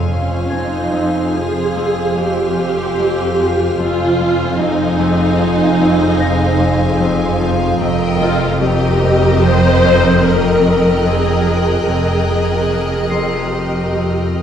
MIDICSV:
0, 0, Header, 1, 10, 480
1, 0, Start_track
1, 0, Key_signature, -4, "minor"
1, 0, Tempo, 828729
1, 1265, Tempo, 806452
1, 2224, Time_signature, 5, 2, 24, 8
1, 6545, Tempo, 826446
1, 8502, End_track
2, 0, Start_track
2, 0, Title_t, "Celesta"
2, 0, Program_c, 0, 8
2, 0, Control_c, 0, 64, 127
2, 289, Note_on_c, 0, 92, 22
2, 295, Note_on_c, 0, 80, 22
2, 1717, Note_off_c, 0, 92, 0
2, 1720, Note_off_c, 0, 80, 0
2, 3658, Note_on_c, 0, 94, 38
2, 4626, Control_c, 0, 64, 0
2, 4722, Control_c, 0, 64, 127
2, 5069, Note_off_c, 0, 94, 0
2, 7732, Note_on_c, 0, 96, 27
2, 7739, Note_on_c, 0, 84, 20
2, 8438, Note_off_c, 0, 96, 0
2, 8441, Note_off_c, 0, 84, 0
2, 8502, End_track
3, 0, Start_track
3, 0, Title_t, "Violin section"
3, 0, Program_c, 1, 48
3, 0, Note_on_c, 1, 84, 27
3, 0, Note_on_c, 1, 89, 29
3, 3877, Note_off_c, 1, 89, 0
3, 4355, Note_off_c, 1, 84, 0
3, 4614, Note_on_c, 1, 87, 47
3, 4616, Note_on_c, 1, 89, 49
3, 5595, Note_on_c, 1, 90, 44
3, 8283, Note_off_c, 1, 89, 0
3, 8283, Note_off_c, 1, 90, 0
3, 8283, Note_on_c, 1, 89, 44
3, 8502, Note_off_c, 1, 87, 0
3, 8502, Note_off_c, 1, 89, 0
3, 8502, End_track
4, 0, Start_track
4, 0, Title_t, "Violin section"
4, 0, Program_c, 2, 48
4, 0, Note_on_c, 2, 80, 48
4, 2199, Note_off_c, 2, 80, 0
4, 2221, Note_on_c, 2, 80, 49
4, 4590, Note_off_c, 2, 80, 0
4, 4613, Note_on_c, 2, 79, 68
4, 5068, Note_off_c, 2, 79, 0
4, 5100, Note_on_c, 2, 79, 56
4, 6046, Note_off_c, 2, 79, 0
4, 6060, Note_on_c, 2, 79, 52
4, 7954, Note_off_c, 2, 79, 0
4, 7979, Note_on_c, 2, 79, 31
4, 8454, Note_off_c, 2, 79, 0
4, 8502, End_track
5, 0, Start_track
5, 0, Title_t, "Violin section"
5, 0, Program_c, 3, 48
5, 0, Note_on_c, 3, 72, 45
5, 0, Note_on_c, 3, 77, 44
5, 2202, Note_off_c, 3, 72, 0
5, 2203, Note_off_c, 3, 77, 0
5, 2230, Note_on_c, 3, 72, 48
5, 2230, Note_on_c, 3, 77, 47
5, 4594, Note_off_c, 3, 72, 0
5, 4594, Note_off_c, 3, 77, 0
5, 4615, Note_on_c, 3, 70, 56
5, 4617, Note_on_c, 3, 75, 61
5, 5070, Note_off_c, 3, 70, 0
5, 5071, Note_off_c, 3, 75, 0
5, 5087, Note_on_c, 3, 75, 64
5, 5094, Note_on_c, 3, 70, 64
5, 6039, Note_off_c, 3, 75, 0
5, 6043, Note_off_c, 3, 70, 0
5, 6050, Note_on_c, 3, 70, 59
5, 6053, Note_on_c, 3, 75, 54
5, 7949, Note_off_c, 3, 70, 0
5, 7950, Note_off_c, 3, 75, 0
5, 7975, Note_on_c, 3, 70, 33
5, 7976, Note_on_c, 3, 75, 31
5, 8452, Note_off_c, 3, 70, 0
5, 8452, Note_off_c, 3, 75, 0
5, 8502, End_track
6, 0, Start_track
6, 0, Title_t, "Ambient pad"
6, 0, Program_c, 4, 92
6, 0, Note_on_c, 4, 65, 60
6, 0, Note_on_c, 4, 72, 52
6, 0, Note_on_c, 4, 77, 60
6, 2205, Note_off_c, 4, 65, 0
6, 2205, Note_off_c, 4, 72, 0
6, 2206, Note_off_c, 4, 77, 0
6, 2234, Note_on_c, 4, 68, 44
6, 2236, Note_on_c, 4, 72, 43
6, 2238, Note_on_c, 4, 77, 46
6, 4596, Note_off_c, 4, 68, 0
6, 4597, Note_off_c, 4, 72, 0
6, 4598, Note_off_c, 4, 77, 0
6, 4608, Note_on_c, 4, 75, 54
6, 4613, Note_on_c, 4, 70, 54
6, 7013, Note_off_c, 4, 75, 0
6, 7015, Note_off_c, 4, 70, 0
6, 7025, Note_on_c, 4, 70, 48
6, 7026, Note_on_c, 4, 75, 45
6, 8444, Note_off_c, 4, 70, 0
6, 8445, Note_off_c, 4, 75, 0
6, 8502, End_track
7, 0, Start_track
7, 0, Title_t, "Viola section"
7, 0, Program_c, 5, 48
7, 64, Note_on_c, 5, 61, 38
7, 285, Note_off_c, 5, 61, 0
7, 302, Note_on_c, 5, 63, 41
7, 786, Note_on_c, 5, 68, 54
7, 788, Note_off_c, 5, 63, 0
7, 1264, Note_off_c, 5, 68, 0
7, 1268, Note_on_c, 5, 67, 57
7, 2226, Note_off_c, 5, 67, 0
7, 2232, Note_on_c, 5, 65, 68
7, 2694, Note_off_c, 5, 65, 0
7, 2702, Note_on_c, 5, 63, 66
7, 4377, Note_off_c, 5, 63, 0
7, 4849, Note_on_c, 5, 65, 68
7, 5074, Note_off_c, 5, 65, 0
7, 5099, Note_on_c, 5, 67, 71
7, 5579, Note_on_c, 5, 72, 87
7, 5585, Note_off_c, 5, 67, 0
7, 6060, Note_off_c, 5, 72, 0
7, 6067, Note_on_c, 5, 70, 65
7, 6545, Note_off_c, 5, 70, 0
7, 6545, Note_on_c, 5, 68, 55
7, 7006, Note_off_c, 5, 68, 0
7, 7013, Note_on_c, 5, 68, 51
7, 7957, Note_off_c, 5, 68, 0
7, 7982, Note_on_c, 5, 67, 33
7, 8465, Note_off_c, 5, 67, 0
7, 8502, End_track
8, 0, Start_track
8, 0, Title_t, "Cello section"
8, 0, Program_c, 6, 48
8, 0, Note_on_c, 6, 41, 49
8, 2200, Note_off_c, 6, 41, 0
8, 2222, Note_on_c, 6, 41, 48
8, 4590, Note_off_c, 6, 41, 0
8, 4608, Note_on_c, 6, 41, 66
8, 6990, Note_off_c, 6, 41, 0
8, 7013, Note_on_c, 6, 41, 36
8, 8438, Note_off_c, 6, 41, 0
8, 8502, End_track
9, 0, Start_track
9, 0, Title_t, "Harp"
9, 0, Program_c, 7, 46
9, 0, Note_on_c, 7, 53, 18
9, 61, Note_on_c, 7, 41, 29
9, 290, Note_off_c, 7, 41, 0
9, 297, Note_on_c, 7, 41, 30
9, 529, Note_off_c, 7, 41, 0
9, 536, Note_on_c, 7, 41, 45
9, 780, Note_off_c, 7, 53, 0
9, 787, Note_on_c, 7, 53, 35
9, 1013, Note_off_c, 7, 41, 0
9, 1020, Note_on_c, 7, 41, 46
9, 1252, Note_off_c, 7, 41, 0
9, 1259, Note_on_c, 7, 41, 34
9, 1500, Note_off_c, 7, 41, 0
9, 1507, Note_on_c, 7, 41, 35
9, 1739, Note_off_c, 7, 41, 0
9, 1747, Note_on_c, 7, 41, 53
9, 1977, Note_off_c, 7, 53, 0
9, 1984, Note_on_c, 7, 53, 38
9, 2215, Note_off_c, 7, 41, 0
9, 2223, Note_on_c, 7, 41, 55
9, 2459, Note_off_c, 7, 41, 0
9, 2466, Note_on_c, 7, 41, 43
9, 2692, Note_off_c, 7, 41, 0
9, 2699, Note_on_c, 7, 41, 43
9, 2928, Note_off_c, 7, 41, 0
9, 2935, Note_on_c, 7, 41, 63
9, 3174, Note_off_c, 7, 53, 0
9, 3182, Note_on_c, 7, 53, 49
9, 3413, Note_off_c, 7, 41, 0
9, 3420, Note_on_c, 7, 41, 60
9, 3653, Note_off_c, 7, 41, 0
9, 3660, Note_on_c, 7, 41, 48
9, 3885, Note_off_c, 7, 41, 0
9, 3893, Note_on_c, 7, 41, 55
9, 4125, Note_off_c, 7, 41, 0
9, 4132, Note_on_c, 7, 41, 68
9, 4363, Note_off_c, 7, 53, 0
9, 4370, Note_on_c, 7, 53, 54
9, 4606, Note_off_c, 7, 41, 0
9, 4613, Note_on_c, 7, 41, 65
9, 4631, Note_off_c, 7, 53, 0
9, 4845, Note_off_c, 7, 41, 0
9, 4852, Note_on_c, 7, 41, 57
9, 5085, Note_off_c, 7, 41, 0
9, 5092, Note_on_c, 7, 41, 54
9, 5337, Note_off_c, 7, 41, 0
9, 5344, Note_on_c, 7, 41, 60
9, 5587, Note_on_c, 7, 53, 57
9, 5819, Note_off_c, 7, 41, 0
9, 5826, Note_on_c, 7, 41, 65
9, 6058, Note_off_c, 7, 41, 0
9, 6065, Note_on_c, 7, 41, 38
9, 6302, Note_off_c, 7, 41, 0
9, 6310, Note_on_c, 7, 41, 42
9, 6540, Note_off_c, 7, 41, 0
9, 6547, Note_on_c, 7, 41, 54
9, 6776, Note_off_c, 7, 53, 0
9, 6782, Note_on_c, 7, 53, 34
9, 7011, Note_off_c, 7, 41, 0
9, 7018, Note_on_c, 7, 41, 37
9, 7256, Note_off_c, 7, 41, 0
9, 7263, Note_on_c, 7, 41, 28
9, 7490, Note_off_c, 7, 41, 0
9, 7497, Note_on_c, 7, 41, 29
9, 7730, Note_off_c, 7, 41, 0
9, 7737, Note_on_c, 7, 41, 35
9, 7969, Note_off_c, 7, 53, 0
9, 7976, Note_on_c, 7, 53, 26
9, 8218, Note_off_c, 7, 41, 0
9, 8225, Note_on_c, 7, 41, 33
9, 8502, Note_off_c, 7, 41, 0
9, 8502, Note_off_c, 7, 53, 0
9, 8502, End_track
10, 0, Start_track
10, 0, Title_t, "Double bass section"
10, 0, Program_c, 8, 48
10, 0, Note_on_c, 8, 29, 43
10, 2199, Note_off_c, 8, 29, 0
10, 2223, Note_on_c, 8, 29, 48
10, 4590, Note_off_c, 8, 29, 0
10, 4612, Note_on_c, 8, 29, 60
10, 6992, Note_off_c, 8, 29, 0
10, 7015, Note_on_c, 8, 29, 36
10, 8439, Note_off_c, 8, 29, 0
10, 8502, End_track
0, 0, End_of_file